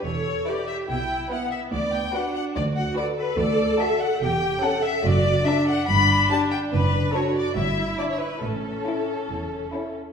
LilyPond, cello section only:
\new Staff \with { instrumentName = "Cello section" } { \clef bass \time 4/4 \key b \minor \tempo 4 = 143 e,4 r4 b,4 r4 | d,4 r4 d,4 r4 | \key d \major d,4 r4 e,4 r4 | fis,4 r4 g,4 r4 |
fis,4 r4 g,4 r4 | a,4 r4 e,4 r4 | }